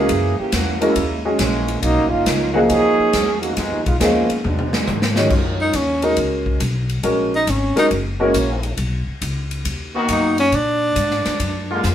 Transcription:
Already playing: trombone section E3 A#3 C#4 G#4
0.09 upright bass F#2, kick, ride
0.39 trombone section E3 A#3 C#4 G4, muted upright bass stroke
0.52 upright bass E2, trombone section E3 A#3 C#4 F#4, kick, snare, hi-hat pedal, ride
0.81 trombone section G#3 A#3 C#4 E4, grand piano G#3 C#4 F#4 A#4, ride
0.96 upright bass D#2, kick, ride
1.25 grand piano G#3 C#4 F#4 G#4
1.38 upright bass A#1, trombone section E3 G#3 A#3 C#4, kick, snare, hi-hat pedal, ride
1.68 ride
1.81 upright bass B1, trombone section F#3 A#3 C#4 D#4, kick, ride
1.97 upright bass A#1
2.09 upright bass F#1, trombone section A#3 C#4 D#4 F4
2.26 upright bass C#2, kick, snare, hi-hat pedal, ride
2.53 trombone section D#3 A#3 C#4 F#4, grand piano F3 A#3 D#4 G#4
2.67 upright bass D#2, trombone section F#3 C#4 D#4 G#4, kick, ride
2.99 muted upright bass stroke
3.13 upright bass E2, kick, snare, hi-hat pedal, ride
3.41 trombone section D#3 A#3 C#4 F#4, ride
3.56 upright bass F2, trombone section F3 G#3 B3 D#4, kick, snare, ride
3.71 upright bass D#2
3.85 upright bass B1, trombone section G#3 B3 D#4 F4, kick, ride
3.99 upright bass D#2, trombone section F3 G#3 B3 C#4, grand piano F3 A#3 D#4 G#4, kick, snare, hi-hat pedal, ride
4.30 muted upright bass stroke, ride
4.44 upright bass E2, trombone section F#3 G#3 B3 D4, mid tom
4.59 mid tom
4.73 snare
4.87 upright bass G#2, hi-hat pedal, high tom
5.02 snare
5.16 grand piano D#3 G#3 C#4 F#4 C#5, snare
5.30 upright bass F#2, trombone section D#3 F#3 C#4 F4, kick, crash
5.61 tenor saxophone D#4
5.73 upright bass D#2, tenor saxophone C#4, kick, hi-hat pedal, ride
6.02 grand piano G#3 C#4 F#4 A#4, tenor saxophone D#4, ride
6.17 upright bass C#2, kick, ride
6.46 kick
6.60 upright bass B1, kick, hi-hat pedal, ride
6.89 ride
7.03 upright bass A#1, grand piano G#3 C#4 F#4 A#4, kick, ride
7.35 tenor saxophone D#4
7.47 upright bass G#1, tenor saxophone C#4, kick, hi-hat pedal, ride
7.76 grand piano G#3 C#4 F#4 A#4, tenor saxophone D#4, muted upright bass stroke, snare, ride
7.91 upright bass F#1, kick, ride
8.19 trombone section E3 A#3 C#4 F#4, grand piano G#3 C#4 F#4 A#4
8.34 upright bass A#1, kick, hi-hat pedal, ride
8.63 ride
8.77 upright bass B1, kick, ride
9.08 muted upright bass stroke
9.22 upright bass C#2, kick, hi-hat pedal, ride
9.51 ride
9.65 upright bass D#2, kick, ride
9.94 trombone section D#3 A#3 B3 F#4
10.09 upright bass F#2, tenor saxophone D#4, kick, hi-hat pedal, ride
10.38 tenor saxophone C#4, ride
10.52 upright bass A#2, tenor saxophone D4, kick, ride
10.96 upright bass G#2, kick, hi-hat pedal, ride
11.11 snare
11.25 muted upright bass stroke, snare, ride
11.39 upright bass F#2, kick, ride
11.69 trombone section D3 G#3 A#3 F4
11.83 upright bass F2, snare, hi-hat pedal

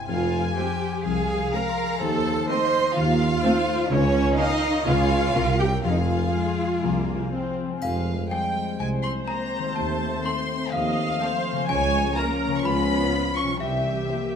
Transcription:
Already playing: harp C4 C5 G5
0.07 tuba F1, double bass section F2, harp F3, cello section F4, violin section F5 G#5
0.25 harp G#3
0.41 harp C5
0.56 viola section G#3 C4, cello section G4, harp F5, violin section G5
0.73 harp C6
0.89 harp G#4
1.04 tuba C2, double bass section C2, harp F3, cello section G#4, violin section F5 G#5
1.21 harp G#3
1.37 harp C5
1.53 viola section G#3 C4, cello section A#4, harp F5, violin section A#5
1.69 harp C6
1.85 harp G#4
2.01 tuba D#2, double bass section D#2, harp D#3, cello section A4, violin section C5 A5
2.17 harp D#4
2.33 harp F4
2.48 viola section A3 C4, harp A4, cello section C5, violin section D#5 C6
2.64 harp F5
2.80 harp C5
2.95 double bass section D#2, tuba D#2, harp D#3, cello section F4, violin section F5
3.12 harp D#4
3.28 harp F4
3.44 viola section A3 C4, harp A4, violin section C5
3.60 harp F5
3.75 harp C5
3.91 double bass section C#2, tuba C#2, harp C#3, cello section C#4, violin section C#5
4.07 harp C#4
4.23 harp F4
4.38 viola section A#3 C#4, cello section D#4, harp A#4, violin section D#5 F5
4.55 harp F5
4.71 harp C#5
4.86 double bass section C#2, tuba C#2, harp C#3, viola section B3 C#4, cello section F4, violin section C#5 F5
5.03 harp B3
5.19 harp F4 C#5
5.35 tuba C2, double bass section C2, harp C3, viola section A#3 C#4, violin section A#4
5.51 harp A#3
5.59 cello section G4, violin section G5
5.67 harp E4 C#5
5.84 tuba F1, double bass section F2, harp F3, cello section F4, violin section G#4 F5
5.91 cello section D#4
5.98 harp G#3, cello section F4
6.17 harp C5
6.34 viola section G#3, harp F5
6.50 harp C6
6.67 harp G#4
6.83 tuba C2, double bass section C2, harp F3, viola section A#3
7.00 harp G#3
7.16 harp C5
7.33 viola section C4, harp F5
7.49 harp C6
7.64 harp F3 G#4
7.69 harp G#3
7.73 harp F4
7.78 tuba F1, french horn section G#3 C4, harp C5, violin section F5, triangle
7.82 double bass section F2, cello section F3, xylophone F5
8.30 cello section G3, violin section C4 G#4 G5, xylophone G5
8.79 tuba C2, double bass section C2, cello section G#3, viola section C5, violin section G#5, xylophone G#5
9.04 cello section C4, xylophone C6, violin section C6
9.27 cello section A#3, violin section C4 G#4 A#5, xylophone A#5
9.58 harp D#3
9.63 harp A3
9.68 harp F4
9.75 tuba D#2, double bass section D#2, cello section A3, french horn section A3, violin section A5, xylophone A5
10.24 cello section C4, violin section C4 A4 C6, xylophone C6
10.72 tuba D#2, double bass section D#2, cello section F3, viola section D#5, xylophone F5, violin section F5
11.21 violin section C4 A4, viola section C5
11.52 harp C#3
11.56 harp A#3
11.61 harp F4
11.65 french horn section F3, cello section G#3, harp C#5, violin section G#5
11.69 tuba C#2, double bass section C#2, french horn section C#4, viola section C#5, xylophone G#5
12.17 cello section A#3, violin section F4 C#5 A#5, viola section A#4, xylophone A#5
12.47 harp C#3
12.52 harp C#4
12.56 harp F4, violin section C#6
12.61 tuba C#2, cello section B3, harp B4
12.65 double bass section C#2, viola section F4, violin section B5, xylophone B5
13.13 violin section F4 B4
13.36 cello section C#4, violin section C#6, xylophone C#6
13.43 harp C3
13.48 harp G3
13.52 harp G4
13.57 tuba C2, harp C5, xylophone E5
13.61 double bass section C2, cello section E3, french horn section G3 C4, viola section G4, violin section E5
14.09 french horn section A#3, violin section G4 C5

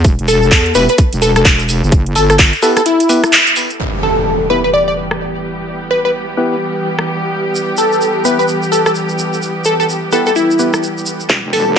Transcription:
0.04 wobble bass E1, kick, closed hi-hat, shaker
0.19 wobble bass E1, closed hi-hat
0.28 digital synth lead A4, open hi-hat, shaker
0.42 shaker
0.51 wobble bass E2, kick, clap, closed hi-hat, shaker
0.66 closed hi-hat
0.75 wobble bass E1, synth stab B3 E4 G4 B4, digital synth lead B4, open hi-hat, shaker
0.89 digital synth lead B4, closed hi-hat, shaker
0.98 kick, closed hi-hat, shaker
1.13 wobble bass E1, closed hi-hat, shaker
1.22 digital synth lead A4, open hi-hat, shaker
1.36 digital synth lead A4, cross-stick, closed hi-hat, shaker
1.45 wobble bass E1, kick, clap, closed hi-hat, shaker
1.59 closed hi-hat, shaker
1.69 open hi-hat, shaker
1.83 wobble bass F#1, shaker
1.92 kick, closed hi-hat, shaker
2.06 closed hi-hat
2.15 wobble bass G1, digital synth lead A4, open hi-hat, shaker
2.30 digital synth lead A4, cross-stick, closed hi-hat, shaker
2.39 kick, clap, closed hi-hat, shaker
2.53 closed hi-hat, shaker
2.62 synth stab B3 E4 G4 B4, digital synth lead A4, open hi-hat, shaker
2.77 digital synth lead A4, cross-stick, closed hi-hat, shaker
2.86 digital synth lead E4, closed hi-hat, shaker
3.00 closed hi-hat, shaker
3.09 synth stab B3 E4 G4 B4, open hi-hat, shaker
3.24 cross-stick, closed hi-hat, shaker
3.32 clap, closed hi-hat, shaker
3.47 closed hi-hat, shaker
3.56 open hi-hat, shaker
3.70 closed hi-hat, shaker
3.80 string section E3 G3 B3 G4, impact
4.03 digital synth lead A4
4.50 synth stab B3 E4 G4 B4, digital synth lead B4
4.64 digital synth lead B4
4.74 digital synth lead D5
4.88 digital synth lead D5
5.11 cross-stick
5.91 digital synth lead B4
6.05 digital synth lead B4
6.37 synth stab B3 E4 G4 B4
6.99 cross-stick
7.55 shaker
7.77 digital synth lead A4, shaker
7.92 shaker
8.01 shaker
8.25 synth stab B3 E4 G4 B4, digital synth lead B4, shaker
8.39 digital synth lead B4, shaker
8.48 shaker
8.62 shaker
8.72 digital synth lead A4, shaker
8.86 digital synth lead A4, cross-stick, shaker
8.95 shaker
9.09 shaker
9.19 shaker
9.33 shaker
9.42 shaker
9.65 digital synth lead A4, shaker
9.80 digital synth lead A4, shaker
9.89 shaker
10.12 synth stab B3 E4 G4 B4, digital synth lead A4, shaker
10.26 digital synth lead A4, shaker
10.36 digital synth lead E4, shaker
10.51 shaker
10.59 synth stab B3 E4 G4 B4, shaker
10.73 cross-stick, shaker
10.83 shaker
10.98 shaker
11.06 shaker
11.20 shaker
11.29 wobble bass E1, string section E3 G3 B3 G4, kick, clap
11.44 wobble bass E1
11.53 digital synth lead A4, open hi-hat

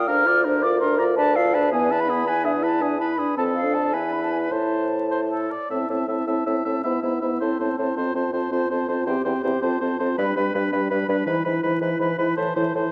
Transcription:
0.07 bassoon D2, french horn D4, oboe A#4, clarinet F5, flute F6
0.26 french horn F4, clarinet D5, oboe D5
0.45 french horn D4, oboe A#4, clarinet C5
0.62 french horn F4, clarinet A#4, oboe D5, flute D6
0.80 french horn D4, oboe A#4, flute C6
0.98 french horn F4, oboe D5, flute A#5
1.17 french horn D4, oboe B4, clarinet D5, flute A5
1.36 french horn F4, oboe A4, flute F5
1.54 french horn D4, oboe B4, flute A5
1.72 bassoon E2, french horn B3, oboe G#4, clarinet B4, flute G#5
1.91 french horn E4, oboe B4, flute A5
2.00 flute B5
2.08 french horn B3, oboe G#4
2.27 french horn E4, oboe B4, clarinet B4, flute G#5
2.45 french horn D4, oboe G#4, flute E5
2.63 french horn E4, oboe B4, flute A5
2.81 french horn D4, oboe G#4, flute G#5
3.00 french horn E4, oboe B4, flute A5
3.10 flute B5
3.19 french horn D4, oboe G#4
3.38 bassoon F2, french horn C4, oboe A4, clarinet A4, flute A5
3.55 flute F5
3.65 french horn D4
3.74 flute A5
3.93 bassoon E2, french horn E4, clarinet B4, oboe B4, flute G#5
4.13 flute B5
4.23 flute A5
4.32 flute G#5
4.51 bassoon A2, french horn E4, clarinet C5, oboe C5, flute A5
5.11 oboe C5
5.31 oboe A4
5.51 oboe D5
5.70 bassoon A2, french horn C4, clarinet E4, oboe E5, flute A5
5.89 bassoon A2, french horn C4, clarinet E4, oboe E5, flute A5
6.08 bassoon A2, french horn C4, clarinet E4, oboe E5, flute A5
6.27 bassoon A2, french horn C4, clarinet E4, oboe E5, flute A5
6.46 bassoon A2, french horn C4, clarinet E4, oboe E5, flute A5
6.65 bassoon A2, french horn C4, clarinet E4, oboe E5, flute A5
6.84 bassoon G#2, french horn B3, clarinet E4, oboe E5, flute B5
7.02 bassoon G#2, french horn B3, clarinet E4, oboe E5, flute B5
7.22 bassoon G#2, french horn B3, clarinet E4, oboe E5, flute B5
7.40 bassoon A2, french horn C4, clarinet E4, oboe C5, flute A5
7.59 bassoon A2, french horn C4, clarinet E4, oboe C5, flute A5
7.78 bassoon A2, french horn C4, clarinet E4, oboe C5, flute A5
7.96 bassoon F2, french horn C4, clarinet F4, oboe C5, flute A5
8.15 bassoon F2, french horn C4, clarinet F4, oboe C5, flute A5
8.33 bassoon F2, french horn C4, clarinet F4, oboe C5, flute A5
8.51 bassoon F2, french horn C4, clarinet F4, oboe C5, flute A5
8.70 bassoon F2, french horn C4, clarinet F4, oboe C5, flute A5
8.88 bassoon F2, french horn C4, clarinet F4, oboe C5, flute A5
9.06 bassoon E2, french horn C4, clarinet G4, oboe C5, flute G5
9.25 bassoon E2, french horn C4, clarinet G4, oboe C5, flute G5
9.43 bassoon E2, french horn C4, clarinet G4, oboe C5, flute G5
9.61 bassoon F2, french horn C4, clarinet F4, oboe C5, flute A5
9.81 bassoon F2, french horn C4, clarinet F4, oboe C5, flute A5
9.99 bassoon F2, french horn C4, clarinet F4, oboe C5, flute A5
10.18 bassoon G2, french horn G3, clarinet D4, oboe B4, flute B5
10.36 bassoon G2, french horn G3, clarinet D4, oboe B4, flute B5
10.54 bassoon G2, french horn G3, clarinet D4, oboe B4, flute B5
10.72 bassoon G2, french horn G3, clarinet D4, oboe B4, flute B5
10.90 bassoon G2, french horn G3, clarinet D4, oboe B4, flute B5
11.08 bassoon G2, french horn G3, clarinet D4, oboe B4, flute B5
11.26 bassoon G#2, french horn E3, clarinet E4, oboe B4, flute B5
11.45 bassoon G#2, french horn E3, clarinet E4, oboe B4, flute B5
11.63 bassoon G#2, french horn E3, clarinet E4, oboe B4, flute B5
11.80 bassoon G#2, french horn E3, clarinet E4, oboe B4, flute B5
11.99 bassoon G#2, french horn E3, clarinet E4, oboe B4, flute B5
12.17 bassoon G#2, french horn E3, clarinet E4, oboe B4, flute B5
12.37 bassoon A2, french horn E3, clarinet E4, oboe C5, flute A5
12.56 bassoon A2, french horn E3, clarinet E4, oboe C5, flute A5
12.75 bassoon A2, french horn E3, clarinet E4, oboe C5, flute A5

